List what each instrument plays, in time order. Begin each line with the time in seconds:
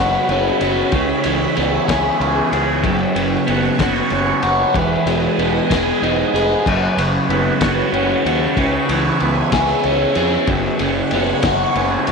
Already playing: fingered electric bass F#1, overdriven electric guitar F#2 C#3 B3 F#4, string machine F#4 B4 C#5 B5
0.29 fingered electric bass F#1, overdriven electric guitar C#4, ride
0.61 fingered electric bass F#1, overdriven electric guitar F#4, ride
0.92 fingered electric bass C#2, overdriven electric guitar C#3, string machine G#4 E5, kick, ride
1.24 fingered electric bass C#2, overdriven electric guitar E3, ride
1.57 fingered electric bass C#2, overdriven electric guitar B3, ride
1.88 fingered electric bass C#2, overdriven electric guitar G#4, kick, snare, ride
2.20 fingered electric bass C#2, overdriven electric guitar C#4, ride
2.52 fingered electric bass C#2, overdriven electric guitar G#4, ride
2.83 fingered electric bass F#1, overdriven electric guitar F#2, string machine B4 F#5 C#6, kick, ride
3.15 fingered electric bass F#1, overdriven electric guitar C#3, ride
3.47 fingered electric bass F#1, overdriven electric guitar B3, ride
3.79 fingered electric bass F#1, overdriven electric guitar F#4, kick, snare, ride
4.10 fingered electric bass F#1, overdriven electric guitar C#4, ride
4.42 fingered electric bass F#1, overdriven electric guitar F#4, ride
4.74 fingered electric bass E1, overdriven electric guitar E3, string machine D#5 G#5 D#6, kick, ride
5.06 fingered electric bass E1, overdriven electric guitar G#3, ride
5.38 fingered electric bass E1, overdriven electric guitar B3, ride
5.70 fingered electric bass E1, overdriven electric guitar G#4, kick, snare, ride
6.02 fingered electric bass E1, overdriven electric guitar D#4, ride
6.34 fingered electric bass F1, overdriven electric guitar G#4, ride
6.65 fingered electric bass F#1, overdriven electric guitar F#2, string machine C#5 F#5 C#6, kick, crash
6.97 fingered electric bass F#1, overdriven electric guitar C#3, ride
7.29 fingered electric bass F#1, overdriven electric guitar B3, ride
7.60 fingered electric bass F#1, overdriven electric guitar F#4, kick, snare, ride
7.93 fingered electric bass F#1, overdriven electric guitar C#4, ride
8.25 fingered electric bass D#2, overdriven electric guitar F#4, ride
8.57 fingered electric bass C#2, overdriven electric guitar C#3, string machine E5 G#5, kick, ride
8.89 fingered electric bass C#2, overdriven electric guitar E3, ride
9.20 fingered electric bass C#2, overdriven electric guitar B3, ride
9.52 fingered electric bass C#2, overdriven electric guitar G#4, kick, snare, ride
9.83 fingered electric bass C#2, overdriven electric guitar C#4, ride
10.15 fingered electric bass F2, overdriven electric guitar G#4, ride
10.47 fingered electric bass F#1, overdriven electric guitar F#2, string machine C#5 F#5 C#6, kick, ride
10.79 fingered electric bass F#1, overdriven electric guitar C#3, ride
11.11 fingered electric bass F#1, overdriven electric guitar B3, ride
11.43 fingered electric bass F#1, overdriven electric guitar F#4, kick, snare, ride
11.75 fingered electric bass F#1, overdriven electric guitar C#4, ride
12.07 fingered electric bass F#1, overdriven electric guitar F#4, ride